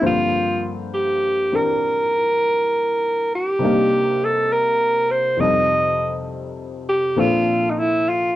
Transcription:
0.01 G2 D3 F3 A#3 C4 C5
0.06 F4
0.94 G4
1.52 E3 C4 D4 G4 A#4
3.35 G4
3.59 C3 G3 D4 D#4
3.64 A#3
4.24 A4
4.53 A#4
5.11 C5
5.37 F2 C3 G3 C4 D#5
5.42 D#4 A4
6.89 G4
7.17 A#2 F3 C4 D4 F4 A4
7.70 D#4
7.78 E4
8.09 F4

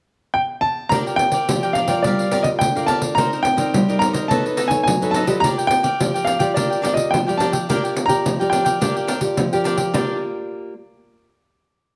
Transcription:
0.34 G5
0.61 A5
0.89 A#3 D4 F4 G4 A#4 D5 G5 A#5, pandeiro
1.07 A#4 D5 G5, pandeiro
1.16 G5, muted cavaquinho stroke, pandeiro
1.32 A#4 D5 G5, pandeiro
1.48 F3 F4 G4 D5, pandeiro
1.63 A#4 D5 G5, pandeiro
1.73 D4 A#4 F5, pandeiro
1.77 D5 G5
1.88 F4 A#4 D5 G5, pandeiro
2.02 G3 G4 A#4 D5, pandeiro
2.07 F5
2.19 A#4 D5 F5, pandeiro
2.31 F4 G4 A#4 D5 F5, pandeiro
2.43 D#5, muted cavaquinho stroke, pandeiro
2.59 D3 G5, pandeiro
2.76 F4 A#4 D5 F5, pandeiro
2.87 G4 A#4 D5 F5 A5, pandeiro
3.01 A#4 D5 F5, pandeiro
3.15 C4 D#4 A#4 D5 A#5, pandeiro
3.19 C5 D#5
3.33 A#4 C5 D#5, pandeiro
3.43 G5, muted cavaquinho stroke, pandeiro
3.57 D#4 A#4 C5 D5 D#5, pandeiro
3.73 G3, pandeiro
3.88 D#4 A#4 C5 D5 D#5, pandeiro
3.99 D#4 A#4 C5 D#5 A#5, pandeiro
4.13 A#4 C5 D#5, pandeiro
4.28 B3 D#4 A4 B4 C#5 D#5 A5, pandeiro
4.45 A4 B4 D#5, pandeiro
4.57 D#4 A4 B4 D#5, pandeiro
4.68 D#4 A4 C#5 G#5, muted cavaquinho stroke, pandeiro
4.83 F#3 G#5
4.87 pandeiro
5.02 D#4 A4 B4 C#5 D#5, pandeiro
5.11 D#4 A4 A5, pandeiro
5.15 B4 D#5
5.27 F4 G4 A4 B4 D5 D#5, pandeiro
5.40 A#3 D4 A#4 A#5, pandeiro
5.45 D5 G5
5.58 A#4 D5 G5, pandeiro
5.67 G5, muted cavaquinho stroke, pandeiro
5.83 A#4 D5 G5, pandeiro
6.00 F3 F4 G4 D5, pandeiro
6.14 A#4 D5 G5, pandeiro
6.25 D4 A#4 D5 F5 G5, pandeiro
6.39 F4 G4 A#4 D5 G5, pandeiro
6.54 A#3 D4 A#4 D5 G5, pandeiro
6.70 A#4 D5 G5, pandeiro
6.82 D4 F4 G4 A#4 D5 G5, pandeiro
6.94 D#5, muted cavaquinho stroke, pandeiro
7.11 F3 G5, pandeiro
7.27 F4 G4 A#4 D5 G5, pandeiro
7.37 D4 F4 G4 A#4 D5 G5 A5, pandeiro
7.52 A#4 D5 G5, pandeiro
7.69 A#3 D4 F4 G4 A#4 D5 G5, pandeiro
7.84 A#4 D5 G5, pandeiro
7.96 muted cavaquinho stroke, pandeiro
8.06 F4 G4 D5 G5 A#5, pandeiro
8.10 A#4
8.25 F3, pandeiro
8.39 F4 G4 A#4 D5 G5, pandeiro
8.50 D4 A#4 D5 G5, pandeiro
8.65 A#4 D5 G5, pandeiro
8.81 A#3 D4 F4 G4 A#4 D5 G5, pandeiro
8.96 A#4 D5 G5, pandeiro
9.07 D4 A#4 D5 G5, pandeiro
9.21 F4 G4 D5, muted cavaquinho stroke, pandeiro
9.37 F3, pandeiro
9.53 F4 G4 A#4 D5 G5, pandeiro
9.64 D4 A#4 D5 G5, pandeiro
9.77 A#4 D5 G5, pandeiro
9.93 A#3 D4 F4 G4 A#4 D5 G5, pandeiro

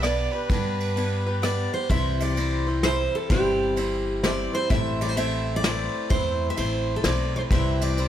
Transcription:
Already playing: B1
0.02 B3 D4 G4 B4 D5, cross-stick, ride
0.32 D4 G4 B4
0.50 G2 B3 D4 G4 B4, kick, ride
0.80 ride
0.96 B3 D4 G4 B4, ride
1.26 D4 G4 B4
1.42 B3 D4 G4 B4 D5, cross-stick, ride
1.74 C5
1.89 C2 C3 E3 G3 C4 E4 C5 E5, kick, ride
2.20 D5, ride
2.36 G3 C4 E4 C5, ride
2.67 G3 C4 E4 C5
2.83 G3 C4 E4 C5, snare, ride
3.15 A4
3.30 G1 C3 E3 G3 C4 E4 G4 C5, kick, ride
3.76 G3 C4 E4 C5, ride
4.23 G3 C4 E4 C5 D5, snare, ride
4.53 G3 C4 E4 C5
4.69 A1 A2 E3 A3 C4 E4 C5 E5, kick, ride
5.01 D5, ride
5.09 C5
5.16 A3 C4 E4 C5 E5, ride
5.56 D5
5.63 A3 C4 E4 C5, snare, ride
6.09 E2 A2 E3 A3 C4 E4 C5, kick, ride
6.50 E5
6.56 A1 A3 C4 E4 C5, ride
6.96 A4
7.04 B1 A3 C4 E4 C5 D5, snare, ride
7.36 C5
7.50 C2 C3 E3 G3 C4 E4 C5 E5, kick, ride
7.81 D5, ride
7.97 G3 C4 E4 C5, ride

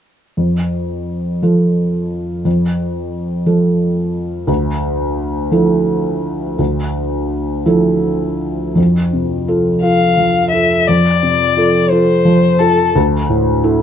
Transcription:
0.37 F2
1.42 F3 F4 A4
2.45 F2
3.46 F3 F4 A4
4.47 D2
5.51 F3 E4 A4
6.59 D2
7.66 F3 E4 A4
8.75 F2
9.13 C3
9.48 F4 A4
9.83 F4 A4 F5
10.17 F3
10.51 F4 A4 E5
10.87 F2 D5
11.23 C3
11.57 F4 A4
11.90 F4 A4 C5
12.25 F3
12.59 F4 A4
12.95 D2
13.29 A2
13.64 E4 A4

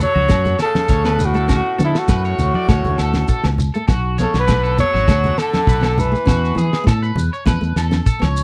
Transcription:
Already playing: A4
0.00 F#3 C#5, low conga, shekere
0.14 C#2 F#4, high conga
0.28 F#2 A3 F#4, kick, snare, low agogo, shekere
0.45 A3, low conga, shekere
0.59 A4, snare, low agogo, shekere
0.65 C#3
0.75 C#4, snare, high conga
0.88 D2 C#5, kick, snare, shekere
1.05 B3 B4, snare, low agogo, shekere
1.19 low conga, shekere
1.24 A2 F#4
1.34 A3 A4, shekere
1.48 C#4 F#4, kick, snare, low agogo, shekere
1.54 A2 F#4
1.78 D3 B3 A4, high conga, shekere
1.83 G#2 E4
1.95 A2 F#4, snare, shekere
2.08 F#2 A3 B4, kick, snare, low agogo, shekere
2.25 C#5, shekere
2.39 D2, low conga, shekere
2.55 D5, high conga
2.68 D2 A3 C#5, kick, snare, low agogo, shekere
2.85 D2 A3, low conga, shekere
2.98 D2 A4, snare, low agogo, shekere
3.13 C#4, snare, high conga
3.28 A4, kick, shekere
3.44 C#2 B3, muted clean electric guitar stroke, snare, low agogo, shekere
3.58 low conga, shekere
3.74 A3 A4, shekere
3.88 B1 F#4, muted steel-string acoustic guitar stroke, kick, snare, low agogo, shekere
4.18 C#3 B3 A4 C#5, high conga, shekere
4.34 B1 D3, snare, shekere
4.39 B4
4.47 A3 B4, kick, snare, low agogo, shekere
4.63 A4, shekere
4.78 F#3 B3 C#5, low conga, shekere
4.93 G#1 F#4, snare, high conga
5.07 D2 A3 F#4, kick, snare, low agogo, shekere
5.24 A3, low conga, shekere
5.38 D3 A4, snare, low agogo, shekere
5.53 C#4, snare, high conga
5.67 B1 B4, kick, shekere
5.81 B3 A4, snare, low agogo, shekere
5.98 E3 B4, low conga, shekere
6.12 A3, muted clean electric guitar stroke, shekere
6.25 E2 C#4 F#4, kick, snare, low agogo, shekere
6.45 shekere
6.55 E3 B3 G#4, high conga, shekere
6.73 snare, shekere
6.84 A2 A3 A4, kick, snare, low agogo
6.88 shekere
7.02 B4, shekere
7.16 E2, low conga, shekere
7.33 C#5, shekere
7.46 E2 A3 B4, kick, snare, high conga, low agogo, shekere
7.61 E2 A3, shekere
7.76 E2 A4, snare, low agogo, shekere
7.91 C#4, snare, high conga, shekere
8.06 A4, kick, shekere
8.19 C#2 B3 C#5, snare, high conga, low agogo, shekere
8.36 shekere

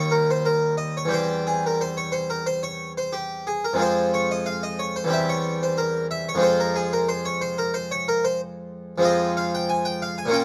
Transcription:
Already playing: D#2 G3 D#4 G4 C#5
0.11 A#4
0.30 C5
0.45 A#4
0.77 D#5
0.97 C#5
1.05 E2 G3 C4
1.11 G4 C5
1.47 G#4
1.66 A#4
1.81 C5
1.97 C#5
2.12 C5
2.30 A#4
2.46 C5
2.63 C#5
2.97 C5
3.13 G4
3.47 G#4
3.64 A#4
3.73 F2 G#3 C4
3.79 F4 C5
4.14 C#5
4.31 D#5
4.46 F5
4.63 D#5
4.79 C#5
4.96 C5
5.04 E2 G3 C4
5.10 G4 E5
5.29 C#5
5.63 C5
5.78 A#4
6.11 E5
6.29 C#5
6.35 F2 G#3 C4
6.40 F4 C5
6.60 A#4
6.76 G#4
6.93 A#4
7.09 C5
7.25 C#5
7.41 C5
7.58 A#4
7.74 C5
7.91 C#5
8.08 A#4
8.24 C5
8.98 F2 G#3 C4
9.02 F4 D#5
9.37 F5
9.55 G5
9.69 G#5
9.85 G5
10.02 F5
10.18 G#5
10.26 A#2 A#3
10.30 C#4 F4
10.34 G5

